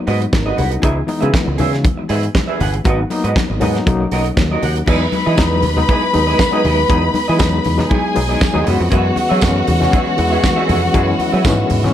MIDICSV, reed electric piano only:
0, 0, Header, 1, 2, 480
1, 0, Start_track
1, 0, Tempo, 505476
1, 789, Time_signature, 4, 2, 24, 8
1, 11334, End_track
2, 0, Start_track
2, 0, Title_t, "Reed electric piano"
2, 0, Program_c, 0, 4
2, 0, Control_c, 0, 64, 127
2, 0, Note_on_c, 0, 54, 89
2, 0, Note_on_c, 0, 58, 84
2, 0, Note_on_c, 0, 59, 76
2, 0, Note_on_c, 0, 63, 93
2, 196, Note_off_c, 0, 54, 0
2, 198, Note_off_c, 0, 58, 0
2, 201, Note_off_c, 0, 59, 0
2, 202, Note_off_c, 0, 63, 0
2, 310, Note_on_c, 0, 70, 69
2, 316, Note_on_c, 0, 63, 44
2, 430, Note_off_c, 0, 63, 0
2, 432, Note_off_c, 0, 70, 0
2, 433, Note_on_c, 0, 68, 63
2, 442, Note_on_c, 0, 63, 61
2, 542, Note_off_c, 0, 68, 0
2, 546, Note_off_c, 0, 63, 0
2, 549, Note_on_c, 0, 66, 74
2, 553, Note_on_c, 0, 61, 56
2, 670, Note_off_c, 0, 66, 0
2, 672, Note_off_c, 0, 61, 0
2, 675, Note_on_c, 0, 63, 63
2, 683, Note_on_c, 0, 58, 54
2, 780, Note_on_c, 0, 52, 72
2, 782, Note_off_c, 0, 63, 0
2, 783, Note_on_c, 0, 56, 66
2, 789, Note_on_c, 0, 59, 72
2, 793, Note_on_c, 0, 63, 82
2, 801, Control_c, 0, 64, 0
2, 908, Note_off_c, 0, 58, 0
2, 941, Note_off_c, 0, 52, 0
2, 942, Note_off_c, 0, 56, 0
2, 945, Note_off_c, 0, 59, 0
2, 947, Note_off_c, 0, 63, 0
2, 975, Control_c, 0, 64, 127
2, 1018, Note_on_c, 0, 52, 81
2, 1024, Note_on_c, 0, 56, 77
2, 1028, Note_on_c, 0, 59, 79
2, 1032, Note_on_c, 0, 63, 97
2, 1103, Note_off_c, 0, 52, 0
2, 1107, Note_off_c, 0, 56, 0
2, 1108, Note_off_c, 0, 59, 0
2, 1111, Note_off_c, 0, 63, 0
2, 1148, Note_on_c, 0, 51, 60
2, 1153, Note_on_c, 0, 56, 69
2, 1159, Note_on_c, 0, 59, 62
2, 1162, Note_on_c, 0, 66, 91
2, 1205, Note_on_c, 0, 52, 67
2, 1206, Note_off_c, 0, 51, 0
2, 1750, Note_off_c, 0, 56, 0
2, 1754, Note_off_c, 0, 59, 0
2, 1755, Note_off_c, 0, 66, 0
2, 1777, Note_off_c, 0, 52, 0
2, 2702, Note_on_c, 0, 54, 72
2, 2709, Note_on_c, 0, 58, 75
2, 2713, Note_on_c, 0, 59, 72
2, 2719, Note_on_c, 0, 63, 86
2, 2722, Control_c, 0, 64, 0
2, 2862, Note_off_c, 0, 54, 0
2, 2866, Note_off_c, 0, 58, 0
2, 2868, Note_off_c, 0, 59, 0
2, 2870, Note_off_c, 0, 63, 0
2, 2887, Control_c, 0, 64, 127
2, 2945, Note_on_c, 0, 54, 78
2, 2949, Note_on_c, 0, 58, 74
2, 2953, Note_on_c, 0, 59, 74
2, 2959, Note_on_c, 0, 63, 95
2, 3253, Note_off_c, 0, 54, 0
2, 3255, Note_off_c, 0, 58, 0
2, 3256, Note_off_c, 0, 59, 0
2, 3260, Note_off_c, 0, 63, 0
2, 3423, Note_on_c, 0, 54, 95
2, 3428, Note_on_c, 0, 58, 83
2, 3431, Note_on_c, 0, 59, 76
2, 3439, Note_on_c, 0, 63, 95
2, 3652, Note_off_c, 0, 54, 0
2, 3658, Note_off_c, 0, 58, 0
2, 3664, Note_on_c, 0, 54, 82
2, 3666, Note_off_c, 0, 63, 0
2, 3669, Note_on_c, 0, 58, 76
2, 3671, Note_off_c, 0, 59, 0
2, 3675, Note_on_c, 0, 61, 78
2, 3677, Note_on_c, 0, 63, 90
2, 3683, Control_c, 0, 64, 0
2, 3854, Control_c, 0, 64, 127
2, 4438, Note_off_c, 0, 54, 0
2, 4441, Note_off_c, 0, 58, 0
2, 4444, Note_off_c, 0, 61, 0
2, 4445, Note_off_c, 0, 63, 0
2, 4623, Note_on_c, 0, 54, 73
2, 4627, Note_on_c, 0, 56, 69
2, 4633, Note_on_c, 0, 59, 71
2, 4635, Note_on_c, 0, 63, 86
2, 4644, Control_c, 0, 64, 0
2, 4787, Control_c, 0, 64, 127
2, 4932, Note_off_c, 0, 54, 0
2, 4934, Note_off_c, 0, 56, 0
2, 4937, Note_off_c, 0, 59, 0
2, 4938, Note_off_c, 0, 63, 0
2, 5098, Note_on_c, 0, 54, 80
2, 5103, Note_on_c, 0, 56, 73
2, 5109, Note_on_c, 0, 59, 72
2, 5114, Note_on_c, 0, 63, 95
2, 5331, Note_off_c, 0, 54, 0
2, 5334, Note_off_c, 0, 56, 0
2, 5337, Note_off_c, 0, 59, 0
2, 5339, Note_off_c, 0, 63, 0
2, 5472, Note_on_c, 0, 54, 75
2, 5476, Note_on_c, 0, 56, 70
2, 5480, Note_on_c, 0, 59, 74
2, 5486, Note_on_c, 0, 63, 84
2, 5700, Note_off_c, 0, 54, 0
2, 5702, Note_off_c, 0, 56, 0
2, 5704, Note_off_c, 0, 59, 0
2, 5707, Note_off_c, 0, 63, 0
2, 5819, Note_on_c, 0, 54, 69
2, 5822, Note_on_c, 0, 56, 75
2, 5827, Note_on_c, 0, 59, 68
2, 5830, Note_on_c, 0, 63, 84
2, 6052, Note_off_c, 0, 54, 0
2, 6053, Note_off_c, 0, 56, 0
2, 6056, Note_off_c, 0, 59, 0
2, 6057, Note_off_c, 0, 63, 0
2, 6188, Note_on_c, 0, 54, 81
2, 6192, Note_on_c, 0, 56, 78
2, 6197, Note_on_c, 0, 59, 69
2, 6201, Note_on_c, 0, 63, 84
2, 6418, Note_off_c, 0, 54, 0
2, 6421, Note_off_c, 0, 56, 0
2, 6423, Note_off_c, 0, 59, 0
2, 6425, Note_off_c, 0, 63, 0
2, 6537, Note_on_c, 0, 54, 72
2, 6542, Note_on_c, 0, 56, 70
2, 6547, Note_on_c, 0, 59, 78
2, 6553, Note_on_c, 0, 63, 86
2, 6849, Note_off_c, 0, 54, 0
2, 6851, Note_off_c, 0, 56, 0
2, 6854, Note_off_c, 0, 59, 0
2, 6857, Note_off_c, 0, 63, 0
2, 7013, Note_on_c, 0, 54, 82
2, 7019, Note_on_c, 0, 56, 79
2, 7023, Note_on_c, 0, 59, 77
2, 7030, Note_on_c, 0, 63, 91
2, 7249, Note_off_c, 0, 54, 0
2, 7252, Note_off_c, 0, 56, 0
2, 7254, Note_off_c, 0, 59, 0
2, 7258, Note_off_c, 0, 63, 0
2, 7385, Note_on_c, 0, 54, 76
2, 7389, Note_on_c, 0, 56, 76
2, 7395, Note_on_c, 0, 59, 67
2, 7399, Note_on_c, 0, 63, 88
2, 7617, Note_off_c, 0, 54, 0
2, 7619, Note_off_c, 0, 56, 0
2, 7622, Note_off_c, 0, 59, 0
2, 7624, Note_off_c, 0, 63, 0
2, 7735, Note_on_c, 0, 54, 75
2, 7742, Note_on_c, 0, 56, 74
2, 7746, Note_on_c, 0, 59, 77
2, 7752, Note_on_c, 0, 63, 79
2, 7970, Note_off_c, 0, 54, 0
2, 7973, Note_off_c, 0, 56, 0
2, 7976, Note_off_c, 0, 59, 0
2, 7978, Note_off_c, 0, 63, 0
2, 8106, Note_on_c, 0, 54, 80
2, 8108, Note_on_c, 0, 56, 82
2, 8114, Note_on_c, 0, 59, 71
2, 8119, Note_on_c, 0, 63, 92
2, 8209, Note_off_c, 0, 56, 0
2, 8214, Note_off_c, 0, 59, 0
2, 8214, Note_on_c, 0, 52, 89
2, 8221, Note_on_c, 0, 56, 77
2, 8225, Note_off_c, 0, 54, 0
2, 8225, Note_on_c, 0, 59, 82
2, 8230, Note_on_c, 0, 61, 104
2, 8231, Note_off_c, 0, 63, 0
2, 8244, Control_c, 0, 64, 0
2, 8434, Control_c, 0, 64, 127
2, 8804, Note_off_c, 0, 52, 0
2, 8807, Note_off_c, 0, 56, 0
2, 8809, Note_off_c, 0, 59, 0
2, 8812, Note_off_c, 0, 61, 0
2, 8936, Note_on_c, 0, 52, 82
2, 8941, Note_on_c, 0, 56, 76
2, 8948, Note_on_c, 0, 59, 85
2, 8951, Note_on_c, 0, 61, 100
2, 9170, Note_off_c, 0, 52, 0
2, 9172, Note_off_c, 0, 56, 0
2, 9176, Note_off_c, 0, 59, 0
2, 9178, Note_off_c, 0, 61, 0
2, 9310, Note_on_c, 0, 52, 79
2, 9313, Note_on_c, 0, 56, 74
2, 9319, Note_on_c, 0, 59, 77
2, 9322, Note_on_c, 0, 61, 88
2, 9539, Note_off_c, 0, 52, 0
2, 9541, Note_off_c, 0, 56, 0
2, 9543, Note_off_c, 0, 59, 0
2, 9545, Note_off_c, 0, 61, 0
2, 9662, Note_on_c, 0, 52, 89
2, 9670, Note_on_c, 0, 56, 82
2, 9672, Note_on_c, 0, 59, 80
2, 9679, Note_on_c, 0, 64, 90
2, 9893, Note_off_c, 0, 52, 0
2, 9897, Note_off_c, 0, 56, 0
2, 9898, Note_off_c, 0, 59, 0
2, 9901, Note_off_c, 0, 64, 0
2, 10032, Note_on_c, 0, 52, 89
2, 10035, Note_on_c, 0, 56, 83
2, 10041, Note_on_c, 0, 59, 72
2, 10044, Note_on_c, 0, 61, 87
2, 10260, Note_off_c, 0, 52, 0
2, 10261, Note_off_c, 0, 56, 0
2, 10264, Note_off_c, 0, 59, 0
2, 10266, Note_off_c, 0, 61, 0
2, 10382, Note_on_c, 0, 52, 86
2, 10388, Note_on_c, 0, 56, 76
2, 10392, Note_on_c, 0, 59, 76
2, 10395, Note_on_c, 0, 61, 97
2, 10691, Note_off_c, 0, 52, 0
2, 10694, Note_off_c, 0, 56, 0
2, 10696, Note_off_c, 0, 59, 0
2, 10698, Note_off_c, 0, 61, 0
2, 10865, Note_on_c, 0, 52, 96
2, 10870, Note_on_c, 0, 56, 81
2, 10875, Note_on_c, 0, 59, 80
2, 10879, Note_on_c, 0, 61, 96
2, 11094, Note_off_c, 0, 52, 0
2, 11097, Note_off_c, 0, 56, 0
2, 11099, Note_off_c, 0, 59, 0
2, 11101, Note_off_c, 0, 61, 0
2, 11235, Note_on_c, 0, 52, 82
2, 11237, Note_on_c, 0, 56, 71
2, 11242, Note_on_c, 0, 59, 73
2, 11248, Note_on_c, 0, 61, 91
2, 11334, Note_off_c, 0, 52, 0
2, 11334, Note_off_c, 0, 56, 0
2, 11334, Note_off_c, 0, 59, 0
2, 11334, Note_off_c, 0, 61, 0
2, 11334, End_track
0, 0, End_of_file